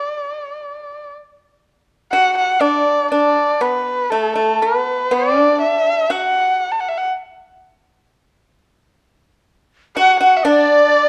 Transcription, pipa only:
0, 0, Header, 1, 2, 480
1, 0, Start_track
1, 0, Tempo, 1027397
1, 993, Time_signature, 4, 2, 24, 8
1, 994, Tempo, 993377
1, 2434, Tempo, 970874
1, 5391, End_track
2, 0, Start_track
2, 0, Title_t, "Pipa"
2, 0, Program_c, 0, 105
2, 994, Note_on_c, 0, 66, 80
2, 1216, Note_off_c, 0, 66, 0
2, 1225, Note_on_c, 0, 62, 67
2, 1451, Note_off_c, 0, 62, 0
2, 1472, Note_on_c, 0, 62, 69
2, 1696, Note_off_c, 0, 62, 0
2, 1710, Note_on_c, 0, 59, 69
2, 1935, Note_off_c, 0, 59, 0
2, 1955, Note_on_c, 0, 57, 67
2, 2064, Note_off_c, 0, 57, 0
2, 2070, Note_on_c, 0, 57, 63
2, 2183, Note_off_c, 0, 57, 0
2, 2199, Note_on_c, 0, 59, 70
2, 2418, Note_off_c, 0, 59, 0
2, 2436, Note_on_c, 0, 59, 69
2, 2584, Note_off_c, 0, 59, 0
2, 2584, Note_on_c, 0, 62, 69
2, 2897, Note_off_c, 0, 62, 0
2, 2924, Note_on_c, 0, 66, 69
2, 3205, Note_off_c, 0, 66, 0
2, 4836, Note_on_c, 0, 66, 89
2, 4946, Note_off_c, 0, 66, 0
2, 4955, Note_on_c, 0, 66, 81
2, 5066, Note_off_c, 0, 66, 0
2, 5074, Note_on_c, 0, 62, 86
2, 5391, Note_off_c, 0, 62, 0
2, 5391, End_track
0, 0, End_of_file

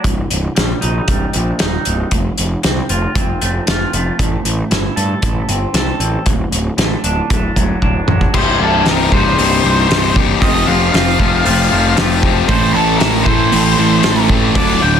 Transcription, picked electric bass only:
0, 0, Header, 1, 2, 480
1, 0, Start_track
1, 0, Tempo, 518135
1, 39, Time_signature, 4, 2, 24, 8
1, 13895, End_track
2, 0, Start_track
2, 0, Title_t, "Picked electric bass"
2, 0, Program_c, 0, 34
2, 40, Note_on_c, 0, 24, 75
2, 188, Note_off_c, 0, 24, 0
2, 288, Note_on_c, 0, 24, 67
2, 434, Note_off_c, 0, 24, 0
2, 532, Note_on_c, 0, 34, 78
2, 676, Note_off_c, 0, 34, 0
2, 771, Note_on_c, 0, 34, 79
2, 915, Note_off_c, 0, 34, 0
2, 1003, Note_on_c, 0, 24, 81
2, 1150, Note_off_c, 0, 24, 0
2, 1254, Note_on_c, 0, 34, 82
2, 1398, Note_off_c, 0, 34, 0
2, 1489, Note_on_c, 0, 27, 82
2, 1635, Note_off_c, 0, 27, 0
2, 1731, Note_on_c, 0, 24, 79
2, 1876, Note_off_c, 0, 24, 0
2, 1962, Note_on_c, 0, 29, 81
2, 2110, Note_off_c, 0, 29, 0
2, 2212, Note_on_c, 0, 29, 77
2, 2357, Note_off_c, 0, 29, 0
2, 2450, Note_on_c, 0, 36, 78
2, 2596, Note_off_c, 0, 36, 0
2, 2682, Note_on_c, 0, 29, 78
2, 2830, Note_off_c, 0, 29, 0
2, 2921, Note_on_c, 0, 29, 86
2, 3070, Note_off_c, 0, 29, 0
2, 3173, Note_on_c, 0, 29, 82
2, 3318, Note_off_c, 0, 29, 0
2, 3408, Note_on_c, 0, 29, 85
2, 3555, Note_off_c, 0, 29, 0
2, 3644, Note_on_c, 0, 29, 84
2, 3792, Note_off_c, 0, 29, 0
2, 3890, Note_on_c, 0, 33, 80
2, 4036, Note_off_c, 0, 33, 0
2, 4121, Note_on_c, 0, 33, 73
2, 4270, Note_off_c, 0, 33, 0
2, 4366, Note_on_c, 0, 31, 77
2, 4514, Note_off_c, 0, 31, 0
2, 4603, Note_on_c, 0, 43, 79
2, 4752, Note_off_c, 0, 43, 0
2, 4842, Note_on_c, 0, 33, 79
2, 4991, Note_off_c, 0, 33, 0
2, 5081, Note_on_c, 0, 31, 80
2, 5231, Note_off_c, 0, 31, 0
2, 5317, Note_on_c, 0, 36, 85
2, 5468, Note_off_c, 0, 36, 0
2, 5554, Note_on_c, 0, 33, 76
2, 5706, Note_off_c, 0, 33, 0
2, 5804, Note_on_c, 0, 26, 79
2, 5953, Note_off_c, 0, 26, 0
2, 6041, Note_on_c, 0, 26, 75
2, 6191, Note_off_c, 0, 26, 0
2, 6281, Note_on_c, 0, 33, 78
2, 6431, Note_off_c, 0, 33, 0
2, 6519, Note_on_c, 0, 26, 71
2, 6670, Note_off_c, 0, 26, 0
2, 6766, Note_on_c, 0, 26, 82
2, 6915, Note_off_c, 0, 26, 0
2, 7010, Note_on_c, 0, 26, 81
2, 7158, Note_off_c, 0, 26, 0
2, 7247, Note_on_c, 0, 26, 78
2, 7396, Note_off_c, 0, 26, 0
2, 7483, Note_on_c, 0, 34, 77
2, 7632, Note_off_c, 0, 34, 0
2, 7728, Note_on_c, 0, 24, 81
2, 7931, Note_off_c, 0, 24, 0
2, 7965, Note_on_c, 0, 24, 80
2, 8169, Note_off_c, 0, 24, 0
2, 8203, Note_on_c, 0, 24, 78
2, 8407, Note_off_c, 0, 24, 0
2, 8450, Note_on_c, 0, 24, 81
2, 8652, Note_off_c, 0, 24, 0
2, 8690, Note_on_c, 0, 24, 95
2, 8891, Note_off_c, 0, 24, 0
2, 8928, Note_on_c, 0, 24, 84
2, 9130, Note_off_c, 0, 24, 0
2, 9172, Note_on_c, 0, 24, 94
2, 9574, Note_off_c, 0, 24, 0
2, 9657, Note_on_c, 0, 29, 81
2, 9855, Note_off_c, 0, 29, 0
2, 9891, Note_on_c, 0, 29, 88
2, 10092, Note_off_c, 0, 29, 0
2, 10134, Note_on_c, 0, 29, 84
2, 10333, Note_off_c, 0, 29, 0
2, 10376, Note_on_c, 0, 29, 81
2, 10574, Note_off_c, 0, 29, 0
2, 10621, Note_on_c, 0, 29, 98
2, 10817, Note_off_c, 0, 29, 0
2, 10863, Note_on_c, 0, 29, 89
2, 11058, Note_off_c, 0, 29, 0
2, 11096, Note_on_c, 0, 29, 86
2, 11495, Note_off_c, 0, 29, 0
2, 11569, Note_on_c, 0, 33, 88
2, 11769, Note_off_c, 0, 33, 0
2, 11817, Note_on_c, 0, 33, 82
2, 12013, Note_off_c, 0, 33, 0
2, 12059, Note_on_c, 0, 33, 88
2, 12255, Note_off_c, 0, 33, 0
2, 12286, Note_on_c, 0, 33, 90
2, 12487, Note_off_c, 0, 33, 0
2, 12539, Note_on_c, 0, 33, 91
2, 12734, Note_off_c, 0, 33, 0
2, 12778, Note_on_c, 0, 33, 92
2, 12973, Note_off_c, 0, 33, 0
2, 13007, Note_on_c, 0, 33, 87
2, 13408, Note_off_c, 0, 33, 0
2, 13486, Note_on_c, 0, 26, 92
2, 13685, Note_off_c, 0, 26, 0
2, 13727, Note_on_c, 0, 26, 86
2, 13895, Note_off_c, 0, 26, 0
2, 13895, End_track
0, 0, End_of_file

